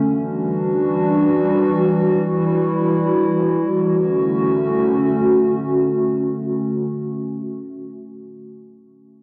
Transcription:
ambient pad
0.02 E3 G3 D4 F#4
1.89 E4
3.77 D3 A3 C#4 F#4

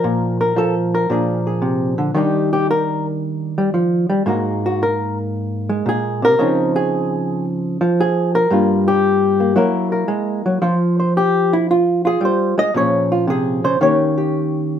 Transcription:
hollow-body jazz guitar
Already playing: F3 D4 A#4
0.04 A#2
0.41 A#4
0.56 F3 A4
0.95 A#4
1.10 A#2 F3 D4 G#4
1.47 G#4
1.62 C3
1.98 D3
2.14 D#3 G3 D4 D#4 G4
2.53 G4
2.71 A#4
3.58 G3
3.74 F3
4.10 G3
4.26 G#2 G#3 A#3 F#4 A#4
4.66 F#4
4.83 A#4
5.69 G#3
5.86 A#2 G#4
6.22 C3 A#4
6.39 C#3 F3 C4 D#4
6.76 G#4
7.81 F3
8.01 G#4
8.35 A#4
8.50 G2 G3 A#3 F4
8.88 G4
9.40 A#3
9.56 F#3 A#3 E4 A#4
9.92 A#4
10.08 G#3
10.46 F#3
10.62 F3 F4 C5
11.00 C5
11.17 G4
11.53 E4
11.71 F4
12.05 F4 G#4
12.21 G3
12.25 C5
12.58 G#3 D#5
12.74 A#2 F3 C#4 G#4 C#5
13.12 F4
13.27 C3 G#4
13.64 C#3 C5
13.81 D#3 A#3 C#4 G4 C#5
14.18 G4

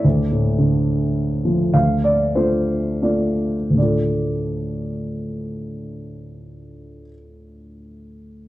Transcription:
upright piano
Already playing: D5
0.04 D2
0.31 A2
0.58 D3
1.45 F3
1.74 D2 F5
2.04 D5
2.35 A3 D4 F4 C5
3.02 A3 D4 F4 D5
3.70 D2 A2
3.76 D3 A3 D5
3.82 F4 A4

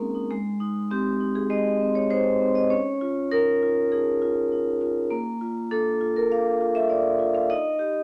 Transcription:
vibraphone
Already playing: G#3 C4 C#4 D#4 G#4
0.00 A#3
0.15 D#4
0.31 G#3
0.60 D#4
0.91 C4 G4
1.21 D#4
1.35 G#4
1.50 G#3 D#5
1.80 C4
1.95 C#5
2.10 D#4 C5
2.41 C4
2.55 D#5
2.70 C#4 C#5
3.01 F4
3.31 D#4 A#4
3.63 F4
3.92 D#4 G#4
4.22 F4
4.52 D#4
4.81 F4
5.10 A#3
5.41 F4
5.71 D4 A4
6.01 F4
6.16 A#4
6.31 D4 F5
6.61 F4
6.75 E5
6.89 D4 D5
7.19 F4
7.35 F5
7.50 D#4 D#5
7.79 G4

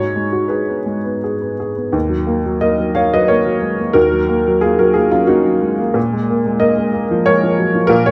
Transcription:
upright piano
Already playing: G#2 F#4 C#5
0.16 G#3
0.33 F#4
0.48 G#4 B4
0.69 B3
0.86 G#3
1.04 B3
1.24 G#4
1.41 B3
1.60 G#4
1.76 B3
1.92 D#2
2.10 F#3
2.27 A#3
2.46 F#3
2.61 A#3 A#4 D#5
2.79 F#3
2.95 A#3 C#5 F5
3.14 F#3 B4 D#5
3.28 A#3 A#4 C#5
3.46 F#3
3.62 G#3
3.79 A#3
3.93 D#2 F#4 A#4
4.11 F#3
4.29 A#3
4.48 F#3
4.61 A#3 F4 G#4
4.79 F#3 F#4 A#4
4.94 A#3 F4 G#4
5.11 F#3 C#4 F4
5.27 A#3 D#4 F#4
5.45 F#3
5.62 G#3
5.79 A#3
5.94 A#2
6.13 G#3
6.30 A#3
6.46 G#3
6.60 A#3 A#4 D#5
6.78 G#3
6.93 A#3
7.11 F3
7.26 G#3 A#4 C#5
7.43 F3
7.58 F#3
7.75 F3
7.87 A#2 F4 A#4
8.06 G#3 A#4 C#5

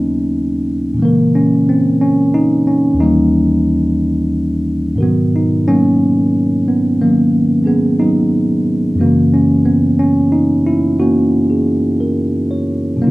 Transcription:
tine electric piano
Already playing: D#2 D#3 F#3 A#3 C#4 D#4 F4 C#5
0.94 A#2 E3
0.99 C#3 E3 G#3 A#3
1.05 A#4
1.35 C#4
1.69 C4
2.01 C#4
2.34 D#4
2.67 C#4
2.94 D#2 D#3
2.99 G3 A#3 C#4 D#4
3.04 E3
4.95 G#2 B2 D#3 A#4
5.01 D#3 F#3 B3 F#4
5.36 D#4
5.68 F#3 A#3 C#4
6.68 B3
7.01 D#3 F#3 A#3
7.63 F#3 B3 C#4 G#4
7.67 B3
8.00 F#3 B3 D#4
8.95 F#2 E3 G#3
8.99 C#3 E3 A#3 C#4 F#4
9.34 C#4
9.65 B3
9.99 C#4
10.32 D#4
10.67 E4
11.00 A#3 C#4 F#4
11.50 G#4
12.00 A#4
12.51 C#5
12.96 B2 F#3
13.02 C#3 D#3 A#3 C#4 D#4
13.07 F4

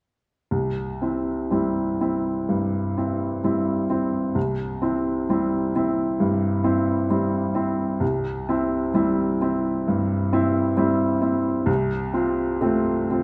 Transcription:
grand piano
0.51 C2
1.02 C4 E4
1.51 G3 C4 E4
2.01 C4 E4
2.49 G2
2.98 C4 E4
3.44 G3 C4 E4
3.90 C4 E4
4.35 C2
4.82 C4 E4
5.29 G3 C4 E4
5.76 C4 E4
6.20 G2
6.64 C4 E4
7.10 G3 C4 E4
7.55 C4 E4
8.00 C2
8.49 C4 E4
8.94 G3 C4 E4
9.41 C4 E4
9.88 G2
10.33 C4 E4
10.77 G3 C4 E4
11.21 C4 E4
11.66 C2
12.14 C4 F4
12.61 A3 C4 F4
13.10 C4 F4

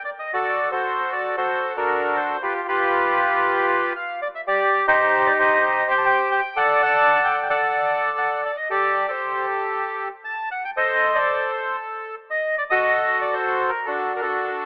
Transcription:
bandoneon
0.04 D5
0.19 D#5
0.33 F#4 A4 D5
0.72 F#4 A4 C5
1.12 D5
1.37 F#4 A4 C5
1.77 D4 F#4 A#4
2.16 C5
2.42 F4 G4 B4
2.68 F4 G4 B4
3.96 F5
4.22 D5
4.35 E5
4.47 G4 D5
4.87 D#4 G4 C5
5.27 D5
5.39 G4 C5 D#5
5.91 G5
5.98 A5
6.06 G5
6.32 G5
6.56 A4 D5 F#5
6.82 D5 F#5 A5
7.24 G5
7.43 G5
7.49 A4 D5 F#5
8.18 F#5
8.45 D5
8.57 D#5
8.70 G4 A4 D5
9.08 G4 A4 C5
10.24 A5
10.51 F#5
10.65 G5
10.77 A4 C5 D#5
11.15 A4 D5
12.30 D#5
12.58 D5
12.70 F#4 A4 D#5
13.22 D5
13.33 C5
13.68 A#4
13.85 D4 F#4 A4
14.16 A#4
14.21 D4 F#4 A4

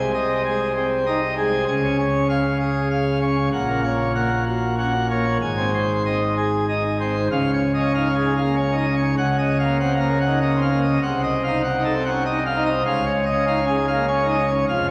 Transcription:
pipe organ
Already playing: C2 C3 G#5
0.00 G#3
0.14 D#5
0.45 G#3 G#4
0.76 C4
1.06 D#4 D#5
1.38 G#3 G#4
1.68 C#2 C#3 G#5
1.84 C#4
1.99 C#5
2.30 C#4 F5
2.60 G#4
2.91 F5
3.22 C#4 C#5
3.53 A#1 A#2 F#5
3.69 A#3
3.84 C#5
4.15 A#3 F#5
4.47 F#4
4.78 C#4 F#5
5.10 A#3 C#5
5.42 G#1 G#2 G#5
5.57 C4
5.74 C5
6.06 C4 D#5
6.37 G#4
6.69 D#4 D#5
7.00 C4 C5
7.32 C#2 C#3 F5
7.53 C#5
7.74 D#5
7.79 C#4
7.95 D#4 F5
8.10 C#4
8.15 G#4
8.26 G#3
8.36 F5
8.41 A#3
8.56 C#4 C#5
8.72 D#4
8.77 D#5
8.87 C#4
8.97 C#5
9.18 C#2 C#3 F#5
9.39 D#5
9.59 F5
9.64 A#3
9.80 C4 F#5
9.95 A#3
10.00 A#4
10.10 C#4
10.21 F#5
10.26 D#4
10.41 A#3 D#5
10.56 C4
10.62 F5
10.71 A#3
10.82 D#5
11.02 C2 C3 F#5
11.23 D#5
11.44 F5
11.48 D#4
11.64 F#5
11.79 D#4
11.84 A4
11.95 C4
12.05 F#5
12.10 C#4
12.26 D#4 D#5
12.46 F5
12.56 D#4
12.66 D#5
12.86 C#2 C#3 F5
13.06 C#5
13.26 D#5
13.32 C#4
13.47 D#4 F5
13.63 C#4
13.68 G#4
13.77 G#3
13.88 F5
13.93 A#3
14.08 C#4 C#5
14.24 D#4
14.29 D#5
14.38 C#4
14.48 C#5
14.69 F1 F2 F5

